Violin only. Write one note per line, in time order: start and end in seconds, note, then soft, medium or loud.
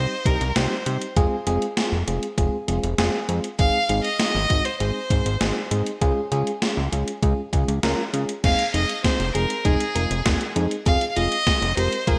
0.00 0.27 C5 medium
0.26 0.57 A#4 medium
0.56 1.01 C5 medium
3.59 4.01 F5 loud
4.04 4.66 D#5 loud
4.65 4.79 C5 medium
4.80 5.67 C5 medium
8.44 8.72 F5 loud
8.74 9.02 D#5 loud
9.05 9.33 C5 medium
9.35 9.67 A#4 medium
9.65 10.56 G#4 medium
10.86 11.10 F5 loud
11.10 11.18 F5 medium
11.17 11.76 D#5 loud
11.77 12.09 C5 medium
12.07 12.19 G#4 medium